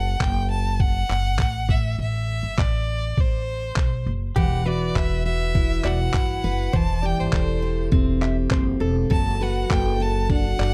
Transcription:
Already playing: upright bass F#1, violin F#5
0.20 upright bass F#1, violin G5, kick, clap
0.51 violin A5
0.80 violin F#5, kick
1.09 upright bass F#1, clap
1.39 upright bass A1, kick, clap
1.69 upright bass A1, violin E5, kick
1.99 upright bass A1, violin E5
2.43 upright bass G1
2.58 upright bass A1, violin D5, kick, clap
3.17 upright bass A1, violin C5, kick
3.76 upright bass B1, kick, clap
4.06 upright bass F#1
4.36 upright bass E1, steel-string acoustic guitar E3, clean electric guitar G4, violin F#5, kick
4.66 steel-string acoustic guitar F#4, clean electric guitar B4, violin D5
4.96 upright bass E1, steel-string acoustic guitar B4, violin E5, kick, clap
5.25 steel-string acoustic guitar F#4, violin E5
5.55 steel-string acoustic guitar E4, kick
5.84 upright bass E1, steel-string acoustic guitar F#4, clean electric guitar D5, violin F#5, clap
6.13 upright bass G1, steel-string acoustic guitar E4, kick, clap
6.44 upright bass F#1, steel-string acoustic guitar B4
6.73 upright bass E1, steel-string acoustic guitar E3, clean electric guitar C5, violin A5, kick
7.02 steel-string acoustic guitar G4, clean electric guitar D5, violin G5
7.18 upright bass G1, violin C5
7.32 upright bass E1, steel-string acoustic guitar A4, kick, clap
7.62 steel-string acoustic guitar G4
7.92 upright bass E1, steel-string acoustic guitar C4, kick
8.21 steel-string acoustic guitar G4, clean electric guitar E5, clap
8.51 upright bass F#1, steel-string acoustic guitar C4, clean electric guitar C5, kick, clap
8.80 upright bass E1, steel-string acoustic guitar A4, clean electric guitar A4
9.10 upright bass F#1, steel-string acoustic guitar F#3, clean electric guitar A4, violin A5, kick
9.41 steel-string acoustic guitar F#4, clean electric guitar B4, violin F#5
9.70 upright bass F#1, steel-string acoustic guitar A4, violin G5, kick, clap
10.00 steel-string acoustic guitar F#4, violin A5
10.30 steel-string acoustic guitar D4, violin F#5, kick
10.59 upright bass F#1, steel-string acoustic guitar F#4, clean electric guitar D5, clap

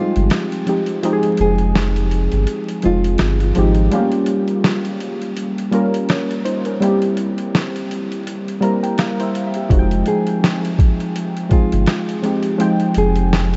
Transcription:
Already playing: synth keys F3 G3 C4 D#4 G4 G5, nylon-string guitar F4
0.00 synth keys G#3
0.16 sub bass G1, closed hi-hat
0.30 snare, closed hi-hat
0.52 closed hi-hat
0.66 synth keys F3 G#3 C4 D#4 G4, closed hi-hat
0.86 closed hi-hat
1.03 synth keys F3 G#3 C4 D#4 G4, closed hi-hat
1.13 synth keys G#4
1.23 closed hi-hat
1.37 sub bass F1, nylon-string guitar G#4, closed hi-hat
1.58 closed hi-hat
1.75 snare, closed hi-hat
1.96 closed hi-hat
2.11 closed hi-hat
2.32 sub bass G1, closed hi-hat
2.47 closed hi-hat
2.69 closed hi-hat
2.82 sub bass F1, synth keys F3 G#3 C4 D#4, nylon-string guitar F4, closed hi-hat
2.87 synth keys F4
3.04 closed hi-hat
3.18 sub bass G1, snare, closed hi-hat
3.40 closed hi-hat
3.55 sub bass G#1, synth keys F3 G#3 C4 D#4 G4, closed hi-hat
3.74 closed hi-hat
3.91 synth keys G3 A3 C#4 F4 G4, closed hi-hat
3.98 synth keys A#3
4.12 closed hi-hat
4.26 closed hi-hat
4.48 closed hi-hat
4.64 snare, closed hi-hat
4.85 closed hi-hat
5.00 closed hi-hat
5.22 closed hi-hat
5.37 closed hi-hat
5.58 closed hi-hat
5.71 synth keys G3 A#3 C#4 F4 A#4, closed hi-hat
5.94 closed hi-hat
6.09 synth keys F4 C#5, snare, closed hi-hat
6.31 closed hi-hat
6.45 synth keys D#4 C5, closed hi-hat
6.65 synth keys C#4 A#4, closed hi-hat
6.80 synth keys G3 A#3 C4 E4 G4, closed hi-hat
7.02 closed hi-hat
7.17 closed hi-hat
7.38 closed hi-hat
7.55 snare, closed hi-hat
7.76 closed hi-hat
7.91 closed hi-hat
8.12 closed hi-hat
8.27 closed hi-hat
8.48 closed hi-hat
8.61 synth keys G3 A#3 C4 E4 A#4 A#5, closed hi-hat
8.83 synth keys G5, closed hi-hat
8.98 synth keys A#4 F5, snare, closed hi-hat
9.20 synth keys E4 C5 E5, closed hi-hat
9.35 closed hi-hat
9.47 synth keys E5
9.54 synth keys G4 E5, closed hi-hat
9.69 sub bass F1, synth keys F3 G#3 C4 D#4 F#4, kick, closed hi-hat
9.79 synth keys G5
9.91 closed hi-hat
10.06 nylon-string guitar G#4, closed hi-hat
10.27 closed hi-hat
10.44 snare, closed hi-hat
10.65 closed hi-hat
10.79 kick, closed hi-hat
11.00 closed hi-hat
11.16 closed hi-hat
11.37 closed hi-hat
11.49 synth keys F3 G#3 C4 D#4 G#4, nylon-string guitar F4, kick, closed hi-hat
11.72 sub bass G1, closed hi-hat
11.86 snare, closed hi-hat
12.09 closed hi-hat
12.22 synth keys F3 G#3 C4 D#4 G4, closed hi-hat
12.43 closed hi-hat
12.58 synth keys F3 G#3 C4 D#4 G5, closed hi-hat
12.80 closed hi-hat
12.94 sub bass F1, nylon-string guitar G#4, closed hi-hat
13.16 closed hi-hat
13.33 snare, closed hi-hat

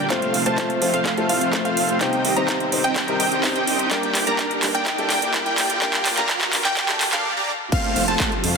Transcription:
Already playing: riser
0.10 analog synth pad C3 F3 A3 F4, grand piano A3 C4 F4 C5, supersaw synth A3 C4 F4 C5 F5, digital synth lead F5, kick, clap, closed hi-hat
0.22 closed hi-hat
0.34 detuned saw bass F1, open hi-hat
0.45 grand piano A3 C4 F4 C5, supersaw synth A3 C4 F4 C5 A5, digital synth lead A5, closed hi-hat
0.58 kick, clap, closed hi-hat
0.70 closed hi-hat
0.81 detuned saw bass F2, grand piano A3 C4 F4 C5, open hi-hat
0.94 supersaw synth A3 C4 F4 C5 F5, digital synth lead F5, closed hi-hat
1.06 kick, clap, closed hi-hat
1.17 grand piano A3 C4 F4 A4, closed hi-hat
1.29 detuned saw bass C2, supersaw synth A3 C4 F4 C5 F5, digital synth lead F5, open hi-hat
1.41 detuned saw bass F1, closed hi-hat
1.53 grand piano A3 C4 F4 C5, kick, clap, closed hi-hat
1.65 supersaw synth A3 C4 F4 C5 F5, digital synth lead F5, closed hi-hat
1.77 detuned saw bass F1, open hi-hat
1.89 closed hi-hat
2.00 grand piano C3 G3 C4 D#4 C5, analog synth pad D#3 G3 C4 G4, supersaw synth C4 D#4 G4 D#5 G5, digital synth lead G5, kick, clap, closed hi-hat
2.13 closed hi-hat
2.25 detuned saw bass C2, open hi-hat
2.36 grand piano C3 G3 C4 D#4 C5, supersaw synth C4 D#4 G4 D#5 A#5, digital synth lead A#5, closed hi-hat
2.48 kick, clap, closed hi-hat
2.60 closed hi-hat
2.72 detuned saw bass G1, grand piano C3 G3 C4 D#4 C5, open hi-hat
2.84 supersaw synth C4 D#4 G4 D#5 G5, digital synth lead G5, closed hi-hat
2.96 kick, clap, closed hi-hat
3.07 grand piano C3 G3 C4 D#4 A#4, closed hi-hat
3.20 detuned saw bass G1, supersaw synth C4 D#4 G4 D#5 G5, digital synth lead G5, open hi-hat
3.32 detuned saw bass C2, closed hi-hat
3.43 grand piano C3 G3 C4 D#4 C5, kick, clap, open hi-hat
3.56 supersaw synth C4 D#4 G4 D#5 G5, digital synth lead G5, closed hi-hat
3.67 detuned saw bass C2, open hi-hat
3.79 closed hi-hat
3.91 grand piano G2 G3 A#3 D4 A#4, analog synth pad D3 A#3, supersaw synth A#3 D4 G4 D5 G5, digital synth lead G5, kick, clap, closed hi-hat
4.03 closed hi-hat
4.15 detuned saw bass G1, clap, open hi-hat
4.26 grand piano G2 G3 A#3 D4 A#4, supersaw synth A#3 D4 G4 D5 A#5, digital synth lead A#5, closed hi-hat
4.39 kick, clap, closed hi-hat
4.51 closed hi-hat
4.62 grand piano G2 G3 A#3 D4 A#4, detuned saw bass G2, clap, open hi-hat
4.75 supersaw synth A#3 D4 G4 D5 G5, digital synth lead G5, closed hi-hat
4.86 kick, clap, closed hi-hat
4.98 grand piano G2 G3 A#3 D4 A4, closed hi-hat
5.10 detuned saw bass D2, supersaw synth A#3 D4 G4 D5 G5, digital synth lead G5, clap, open hi-hat
5.22 detuned saw bass G1, closed hi-hat
5.34 grand piano G2 G3 A#3 D4 A#4, kick, clap, closed hi-hat
5.46 supersaw synth A#3 D4 G4 D5 G5, digital synth lead G5, closed hi-hat
5.58 detuned saw bass G1, clap, open hi-hat
5.70 closed hi-hat
5.81 grand piano G2 G3 A#3 D4 A#4, supersaw synth A#3 D4 G4 D5 G5, analog synth pad F4, digital synth lead G5, kick, clap, closed hi-hat
5.94 clap, closed hi-hat
6.05 detuned saw bass G1, clap, open hi-hat
6.17 grand piano G2 G3 A#3 D4 A#4, supersaw synth A#3 D4 G4 D5 A#5, digital synth lead A#5, clap, closed hi-hat
6.29 kick, clap, closed hi-hat
6.41 clap, closed hi-hat
6.53 grand piano G2 G3 A#3 D4 A#4, detuned saw bass G2, clap, open hi-hat
6.65 supersaw synth A#3 D4 G4 D5 G5, digital synth lead G5, clap, closed hi-hat
6.77 kick, clap, closed hi-hat
6.88 grand piano G2 G3 A#3 D4 A4, clap, closed hi-hat
7.01 detuned saw bass G1, clap, open hi-hat
7.12 grand piano G2 G3 A#3 D4 A4, detuned saw bass G2, supersaw synth A#3 D4 G4 D5 F5, digital synth lead F5, clap, closed hi-hat
7.36 supersaw synth A#3 D4 G4 D5 A#5
7.72 analog synth pad C3 F3 A3 F4, supersaw synth A3 C4 F4 C5 F5, digital synth lead F5, kick, closed hi-hat, crash, ride, downlifter
7.84 closed hi-hat
7.96 detuned saw bass F1, open hi-hat, ride
8.08 supersaw synth A3 C4 F4 C5 A5, digital synth lead A5, closed hi-hat
8.20 kick, clap, closed hi-hat, ride
8.32 closed hi-hat
8.44 detuned saw bass F2, open hi-hat, ride

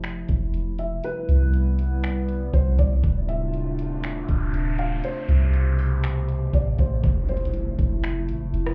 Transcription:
Already playing: 808-style bass F1, ambient pad C3 F3 A3 E4
0.03 finger snap, closed hi-hat
0.29 808-style bass F1, kick, closed hi-hat
0.54 808-style bass E1, closed hi-hat
0.79 felt piano E5, closed hi-hat
1.04 ambient pad C3 G3 B3, felt piano B4, closed hi-hat
1.29 808-style bass C2, closed hi-hat
1.54 closed hi-hat
1.79 closed hi-hat
2.04 finger snap, closed hi-hat
2.29 closed hi-hat
2.53 808-style bass C2, felt piano C5, kick, closed hi-hat
2.79 808-style bass C2, felt piano D5, kick, closed hi-hat
3.04 808-style bass D1, ambient pad A3 D4 F4, kick, closed hi-hat, noise sweep
3.28 felt piano E5, closed hi-hat
3.54 closed hi-hat
3.79 closed hi-hat
4.03 finger snap, closed hi-hat
4.29 808-style bass D1, kick, closed hi-hat
4.54 808-style bass D1, closed hi-hat
4.79 felt piano F5, closed hi-hat
5.04 ambient pad B2 G4, felt piano C5, closed hi-hat
5.29 808-style bass C2, closed hi-hat
5.54 closed hi-hat
5.79 open hi-hat
6.03 finger snap, closed hi-hat
6.29 closed hi-hat
6.53 808-style bass A1, felt piano D5, kick, closed hi-hat
6.79 808-style bass A1, felt piano C5, kick, closed hi-hat
7.04 808-style bass F1, ambient pad C3 F3 A3 E4, kick, closed hi-hat, impact
7.29 felt piano C5, closed hi-hat
7.37 closed hi-hat
7.45 closed hi-hat
7.54 closed hi-hat
7.79 808-style bass F1, kick, closed hi-hat
8.03 finger snap, closed hi-hat
8.29 808-style bass A1, closed hi-hat
8.41 808-style bass F1
8.54 808-style bass E1, closed hi-hat
8.66 cross-stick

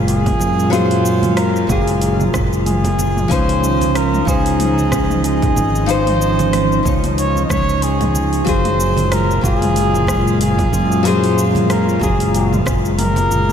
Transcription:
Already playing: fretless electric bass F#1, analog synth pad A#2 G#3 F4, nylon-string guitar F#3 A#3 F4 G#4
0.07 muted trumpet G#4, open hi-hat, shaker
0.26 kick, mid tom, open hi-hat, low conga, shaker
0.40 fretless electric bass F#2, high conga, shaker
0.59 shaker
0.70 nylon-string guitar F#3 A#3 F4, muted trumpet C5, mid tom, open hi-hat, shaker
0.74 nylon-string guitar G#4
0.91 open hi-hat
1.06 shaker
1.23 mid tom, open hi-hat, high conga, shaker
1.37 muted trumpet A#4, cross-stick, open hi-hat, shaker
1.56 shaker
1.67 fretless electric bass F#1, nylon-string guitar F#3 A#3 F4, muted trumpet G#4, kick, mid tom, low conga, shaker
1.71 nylon-string guitar G#4
1.88 open hi-hat, shaker
2.02 open hi-hat, shaker
2.20 mid tom, high conga, shaker
2.34 fretless electric bass F#1, kick, cross-stick, low conga, shaker
2.53 shaker
2.66 muted trumpet G#4, mid tom, open hi-hat, shaker
2.84 open hi-hat, low conga, shaker
2.99 high conga, shaker
3.17 mid tom, shaker
3.28 fretless electric bass C#2, nylon-string guitar F3 C#4 D#4, analog synth pad F3 D#4, muted trumpet C5, kick, open hi-hat, shaker
3.32 nylon-string guitar C5
3.49 open hi-hat
3.63 mid tom, shaker
3.81 open hi-hat, high conga, shaker
3.95 muted trumpet A#4, cross-stick, open hi-hat, shaker
4.14 mid tom, shaker
4.25 fretless electric bass C#2, nylon-string guitar F3 C#4 D#4, muted trumpet G#4, kick, low conga, shaker
4.29 nylon-string guitar C5
4.46 open hi-hat, shaker
4.60 mid tom, open hi-hat, shaker
4.78 high conga, shaker
4.92 kick, cross-stick, low conga, shaker
5.10 mid tom, shaker
5.24 muted trumpet G#4, open hi-hat, shaker
5.42 kick, open hi-hat, low conga, shaker
5.56 fretless electric bass G#1, mid tom, high conga, shaker
5.75 shaker
5.86 nylon-string guitar F3 C#4 D#4, muted trumpet C5, open hi-hat, shaker
5.90 nylon-string guitar C5
6.07 mid tom, open hi-hat
6.22 shaker
6.39 open hi-hat, high conga, shaker
6.53 cross-stick, mid tom, open hi-hat, shaker
6.72 shaker
6.83 fretless electric bass C#2, nylon-string guitar F3 C#4 D#4, kick, low conga, shaker
6.87 nylon-string guitar C#5
7.04 mid tom, open hi-hat, shaker
7.18 muted trumpet C#5, open hi-hat, shaker
7.36 high conga, shaker
7.45 muted trumpet D#5
7.49 fretless electric bass C#2, muted trumpet C#5, kick, cross-stick, mid tom, low conga, shaker
7.69 shaker
7.82 muted trumpet G#4, open hi-hat, shaker
8.01 mid tom, open hi-hat, low conga, shaker
8.15 high conga, shaker
8.33 open hi-hat, shaker
8.45 fretless electric bass F#1, analog synth pad A#2 G#3 F4, nylon-string guitar F#3 A#3 F4, muted trumpet C5, kick, open hi-hat, shaker
8.49 nylon-string guitar G#4
8.65 mid tom, open hi-hat
8.80 shaker
8.97 open hi-hat, high conga, shaker
9.12 muted trumpet A#4, cross-stick, mid tom, open hi-hat, shaker
9.31 shaker
9.41 fretless electric bass F#1, nylon-string guitar F#3 A#3 F4, muted trumpet G#4, kick, low conga, shaker
9.45 nylon-string guitar G#4
9.62 mid tom, open hi-hat, shaker
9.76 open hi-hat, shaker
9.95 high conga, shaker
10.07 kick, cross-stick, mid tom, low conga, shaker
10.28 shaker
10.41 muted trumpet G#4, open hi-hat, shaker
10.58 kick, mid tom, open hi-hat, low conga, shaker
10.73 fretless electric bass F#2, high conga, shaker
10.92 shaker
11.03 nylon-string guitar F#3 A#3 F4, muted trumpet C5, mid tom, open hi-hat, shaker
11.07 nylon-string guitar G#4
11.24 open hi-hat
11.38 shaker
11.55 mid tom, open hi-hat, high conga, shaker
11.70 muted trumpet A#4, cross-stick, open hi-hat, shaker
11.89 shaker
11.99 fretless electric bass F#1, nylon-string guitar F#3 A#3 F4, muted trumpet G#4, kick, mid tom, low conga, shaker
12.04 nylon-string guitar G#4
12.20 open hi-hat, shaker
12.35 open hi-hat, shaker
12.53 mid tom, high conga, shaker
12.66 fretless electric bass F#1, kick, cross-stick, low conga, shaker
12.85 shaker
12.99 muted trumpet A#4, mid tom, open hi-hat, shaker
13.16 open hi-hat, low conga, shaker
13.31 high conga, shaker
13.49 mid tom

